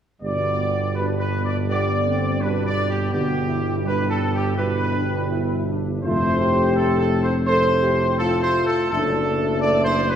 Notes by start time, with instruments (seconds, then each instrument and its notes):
0.22 tuba G1, trombone section B2 G3, french horn section B3, trumpet section D5
0.95 trombone section B2 G3, french horn section D4, trumpet section B4
1.19 trumpet section B4
1.45 trumpet section D5
1.67 trombone section D3 G3, french horn section B3, trumpet section D5
2.06 french horn section C4
2.40 trombone section B2 G3, french horn section D4, trumpet section B4
2.66 trumpet section D5
2.90 trumpet section G4
3.12 tuba G1, trombone section B2 G3, french horn section B3, trumpet section G4
3.47 french horn section E4
3.83 trombone section B2 G3, french horn section D4
3.87 trumpet section B4
4.10 trumpet section A4
4.35 trumpet section G4
4.55 trombone section B2 G3, french horn section E4, trumpet section B4
4.93 french horn section D4
5.31 french horn section E4
5.67 french horn section D4
6.03 tuba F1, trombone section A2 A3, french horn section F4, trumpet section C5
6.40 french horn section G4
6.76 trombone section A2 A3, trumpet section A4
6.99 trumpet section A4
7.23 trumpet section C5
7.46 trombone section A2 A3, french horn section A4, trumpet section C5
7.82 french horn section G4
8.18 trombone section A2 A3, french horn section F4, trumpet section A4
8.42 trumpet section C5
8.66 trumpet section A4
8.89 tuba F#1, trombone section A2 A3, french horn section D4, trumpet section A4
9.61 trombone section A2 A3, trumpet section D5
9.84 trumpet section C5
10.09 trumpet section B4